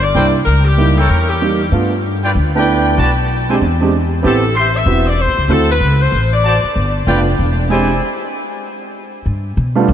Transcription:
0.00 0.13 G1 medium
0.00 0.35 D5 medium
0.15 0.44 C2 medium
0.15 0.33 G3 medium
0.15 0.34 A#3 soft
0.15 0.34 D4 soft
0.15 0.29 E4 medium
0.15 0.34 E4 medium
0.15 0.29 A#4 medium
0.15 0.29 C5 medium
0.15 0.29 G5 medium
0.45 1.07 C#2 medium
0.45 0.64 A#4 medium
0.65 0.97 G4 medium
0.78 0.96 G3 medium
0.78 0.96 A#3 soft
0.78 0.96 D#4 soft
0.78 0.96 E4 medium
0.98 1.39 E4 medium
0.98 1.10 A4 medium
0.98 1.39 A#4 medium
0.98 1.39 C#5 medium
0.98 1.39 G5 medium
1.09 1.69 E2 medium
1.09 1.29 A#4 medium
1.29 1.61 G4 medium
1.42 1.59 G3 soft
1.42 1.60 A#3 soft
1.42 1.60 D#4 soft
1.42 1.60 G4 soft
1.72 2.32 G2 medium
1.72 1.90 A3 soft
1.72 1.90 B3 soft
1.72 1.90 D4 soft
1.72 1.91 F4 medium
2.24 2.32 F4 medium
2.24 2.32 B4 medium
2.24 2.32 D5 medium
2.24 2.32 G5 medium
2.35 2.95 D2 medium
2.55 2.96 A3 soft
2.55 2.96 B3 medium
2.55 2.96 D4 soft
2.55 2.96 E4 medium
2.55 2.97 B4 medium
2.55 2.97 D5 medium
2.55 2.96 G5 medium
2.98 3.58 B1 medium
2.98 3.12 F#4 medium
2.98 3.12 B4 medium
2.98 3.12 D5 medium
2.98 3.12 A5 medium
3.50 3.60 G#3 soft
3.50 3.60 C4 soft
3.50 3.60 D4 soft
3.50 3.57 E4 medium
3.50 3.61 G4 medium
3.50 3.58 C5 medium
3.50 3.57 D5 medium
3.50 3.57 G#5 medium
3.61 4.21 E2 medium
3.81 3.92 G#3 medium
3.81 3.92 C4 medium
3.81 3.92 D4 soft
3.81 3.92 G4 medium
4.23 4.84 A1 medium
4.23 4.41 B3 medium
4.23 4.42 C4 medium
4.23 4.42 E4 medium
4.23 4.42 G4 medium
4.23 4.38 G4 medium
4.23 4.54 A4 medium
4.23 4.38 C5 medium
4.23 4.38 E5 medium
4.23 4.38 A5 medium
4.55 4.69 G4 medium
4.55 4.69 C5 medium
4.55 4.76 C5 medium
4.55 4.69 E5 medium
4.55 4.69 C6 medium
4.77 5.08 E5 medium
4.86 5.25 E1 medium
4.86 5.05 B3 soft
4.86 5.05 C4 soft
4.86 5.05 E4 soft
4.86 5.05 F#4 medium
5.08 5.19 D5 medium
5.21 5.51 C5 medium
5.28 5.37 A1 medium
5.38 5.48 C#2 medium
5.48 5.78 D2 medium
5.48 5.67 A3 medium
5.48 5.68 C4 soft
5.48 5.68 E4 medium
5.48 5.68 F#4 medium
5.48 5.70 A4 medium
5.71 5.99 B4 loud
5.81 6.10 C#2 medium
6.02 6.33 C5 medium
6.12 6.60 A1 medium
6.34 6.92 D5 medium
6.45 6.58 F#4 medium
6.45 6.58 C5 medium
6.45 6.58 D5 medium
6.45 6.58 A5 medium
6.64 muted upright bass stroke soft
6.76 7.05 G1 medium
7.07 7.36 F1 medium
7.07 7.25 A3 medium
7.07 7.25 B3 soft
7.07 7.25 D4 soft
7.07 7.20 F4 medium
7.07 7.25 F4 medium
7.07 7.21 B4 medium
7.07 7.21 D5 medium
7.07 7.21 G5 medium
7.39 7.98 E1 medium
7.69 7.87 G#3 soft
7.69 7.88 C4 soft
7.69 7.88 D4 soft
7.69 8.01 E4 medium
7.69 7.88 G4 medium
7.69 8.01 C5 medium
7.69 8.01 D5 medium
7.69 8.02 G#5 medium
9.26 9.56 G2 medium
9.57 9.88 B2 medium
9.75 9.87 G3 medium
9.75 9.87 A3 medium
9.75 9.87 B3 medium
9.75 9.87 D4 medium
9.75 9.87 F4 medium
9.88 9.94 B1 medium

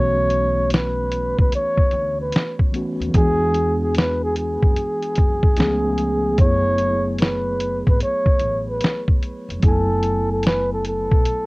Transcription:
0.00 1.34 B1 loud
0.00 2.68 E3 medium
0.00 2.69 A3 medium
0.00 2.70 B3 medium
0.00 2.71 C#4 medium
0.00 2.72 F#4 medium
0.00 0.68 C#5 loud
0.30 closed hi-hat medium
0.70 1.35 B4 medium
0.70 snare loud
0.70 closed hi-hat medium
1.11 closed hi-hat medium
1.38 1.51 C#2 medium
1.38 1.52 B4 medium
1.38 kick medium
1.52 2.16 C#5 medium
1.52 closed hi-hat medium
1.77 kick medium
1.91 2.30 D2 medium
1.91 closed hi-hat medium
2.21 2.56 B4 medium
2.32 snare loud
2.32 closed hi-hat medium
2.59 kick medium
2.72 3.08 E3 soft
2.72 3.14 A3 medium
2.72 3.12 B3 soft
2.72 3.15 C#4 medium
2.72 closed hi-hat medium
2.76 3.15 F#4 medium
3.00 3.13 D#2 medium
3.00 closed hi-hat soft
3.09 5.51 E3 medium
3.09 5.52 G#3 medium
3.14 4.58 E2 loud
3.14 5.53 B3 medium
3.14 5.54 D4 soft
3.14 3.78 G#4 loud
3.14 kick loud
3.14 closed hi-hat medium
3.18 5.55 F#4 medium
3.54 closed hi-hat medium
3.83 3.95 G#4 medium
3.95 4.20 B4 medium
3.95 snare loud
3.95 closed hi-hat medium
4.24 4.36 G#4 medium
4.36 6.35 G#4 medium
4.36 closed hi-hat medium
4.63 4.76 F#2 medium
4.63 kick medium
4.77 closed hi-hat medium
5.03 closed hi-hat soft
5.16 5.55 F#2 medium
5.16 kick medium
5.16 closed hi-hat medium
5.43 kick medium
5.57 6.35 C#2 loud
5.57 6.38 F3 medium
5.57 6.36 A3 medium
5.57 6.38 B3 medium
5.57 6.40 C#4 medium
5.57 snare loud
5.57 closed hi-hat medium
5.62 6.41 G#4 medium
5.98 closed hi-hat medium
6.35 9.57 F#3 medium
6.35 9.58 A3 soft
6.35 kick loud
6.35 closed hi-hat medium
6.39 7.82 F#1 loud
6.39 9.59 B3 medium
6.39 9.60 E4 medium
6.39 7.16 C#5 loud
6.43 9.61 G#4 medium
6.78 closed hi-hat medium
7.18 7.83 B4 medium
7.18 snare loud
7.18 closed hi-hat medium
7.60 closed hi-hat medium
7.87 8.00 G#1 medium
7.87 8.00 B4 medium
7.87 kick medium
8.01 8.64 C#5 medium
8.01 closed hi-hat medium
8.26 kick medium
8.40 8.78 A1 medium
8.40 closed hi-hat medium
8.70 9.05 B4 medium
8.81 snare loud
8.81 closed hi-hat medium
9.08 kick loud
9.23 closed hi-hat medium
9.49 9.62 F1 medium
9.49 closed hi-hat soft
9.60 11.07 F#1 loud
9.60 11.46 F#3 medium
9.60 11.46 A3 medium
9.60 kick loud
9.60 closed hi-hat medium
9.64 11.46 B3 medium
9.64 11.46 E4 medium
9.64 10.27 A4 loud
9.68 11.46 G#5 medium
10.03 closed hi-hat medium
10.32 10.48 A4 medium
10.43 10.69 B4 medium
10.43 snare loud
10.43 closed hi-hat medium
10.73 10.85 A4 medium
10.85 11.46 A4 medium
10.85 closed hi-hat medium
11.11 11.24 B1 medium
11.11 kick medium
11.25 closed hi-hat medium

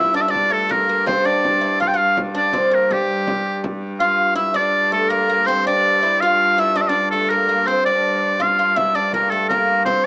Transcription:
0.00 4.01 G2 medium
0.00 0.14 E4 medium
0.00 0.15 E5 medium
0.14 0.27 D4 medium
0.14 0.23 D5 medium
0.14 frame drum soft
0.21 0.32 E5 medium
0.28 0.52 D4 medium
0.28 0.54 D5 medium
0.34 frame drum medium
0.50 0.68 A3 medium
0.50 0.73 A4 medium
0.69 0.88 A#3 medium
0.69 1.06 A#4 medium
0.69 frame drum medium
0.89 1.08 A#3 medium
0.89 frame drum soft
1.06 1.24 C4 medium
1.06 1.27 C5 medium
1.06 frame drum loud
1.25 1.61 D4 medium
1.25 1.80 D5 medium
1.25 frame drum soft
1.44 frame drum medium
1.61 1.80 E4 medium
1.80 1.92 F4 medium
1.80 1.89 F5 medium
1.80 frame drum medium
1.88 1.99 G5 medium
1.94 2.15 F4 medium
1.94 2.19 F5 loud
1.98 frame drum soft
2.17 frame drum medium
2.35 2.53 D4 medium
2.35 2.76 D5 medium
2.35 frame drum soft
2.53 2.73 C4 medium
2.53 frame drum medium
2.71 2.90 A#3 medium
2.71 2.94 A#4 medium
2.91 3.60 G3 medium
2.91 3.65 G4 medium
2.91 frame drum medium
3.27 frame drum medium
3.64 frame drum medium
4.00 8.40 G2 medium
4.00 4.35 F4 medium
4.00 4.34 F5 loud
4.35 4.54 E4 medium
4.35 4.58 E5 loud
4.54 4.93 D4 medium
4.54 4.92 D5 loud
4.92 5.10 A3 medium
4.92 5.13 A4 medium
5.10 5.28 A#3 medium
5.10 5.48 A#4 medium
5.29 5.48 A#3 medium
5.46 5.66 C4 medium
5.46 5.65 C5 loud
5.67 6.02 D4 medium
5.67 6.22 D5 loud
6.03 6.21 E4 medium
6.21 6.58 F4 medium
6.21 6.61 F5 loud
6.58 6.75 E4 medium
6.58 6.78 E5 loud
6.76 6.88 D4 medium
6.76 6.83 D5 medium
6.82 6.91 E5 medium
6.89 7.11 D4 medium
6.89 7.10 D5 medium
7.11 7.30 A3 medium
7.11 7.31 A4 medium
7.30 7.47 A#3 medium
7.30 7.68 A#4 medium
7.49 7.68 A#3 medium
7.67 7.86 C4 medium
7.67 7.85 C5 medium
7.85 8.37 D4 medium
7.85 8.44 D5 loud
8.40 10.06 G2 medium
8.40 8.58 F4 medium
8.40 8.79 F5 loud
8.40 frame drum medium
8.59 8.76 F4 medium
8.59 frame drum soft
8.76 8.95 E4 medium
8.76 8.97 E5 loud
8.76 frame drum medium
8.95 9.14 D4 medium
8.95 9.13 D5 medium
8.95 frame drum soft
9.13 9.32 A#3 medium
9.13 9.32 A#4 medium
9.13 frame drum medium
9.31 9.50 A3 medium
9.31 9.48 A4 medium
9.49 9.88 A#3 medium
9.49 9.83 A#4 medium
9.49 frame drum medium
9.70 frame drum soft
9.85 10.05 C4 medium
9.85 10.06 C5 medium
9.85 frame drum medium

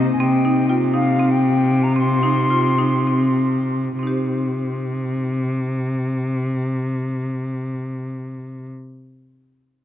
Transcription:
0.00 0.17 C3 medium
0.00 0.19 C3 medium
0.00 0.19 A#3 medium
0.00 0.19 D#4 medium
0.13 0.22 G#5 medium
0.20 3.95 C3 medium
0.20 0.36 C4 medium
0.20 0.68 G5 medium
0.45 0.61 D#4 medium
0.69 0.86 F4 medium
0.69 0.75 G5 medium
0.94 1.10 D#4 medium
0.94 1.33 F5 medium
1.19 1.53 C4 medium
1.31 1.85 G5 medium
1.84 1.96 A#5 medium
1.96 2.14 C4 medium
1.96 3.33 C6 medium
2.23 2.41 D#4 medium
2.50 2.69 F4 medium
2.78 2.97 D#4 medium
3.07 3.47 C4 medium
3.98 8.68 C3 medium
3.98 8.68 C4 soft
4.03 8.72 D#4 soft
4.07 8.76 G4 soft
4.07 8.80 C5 soft

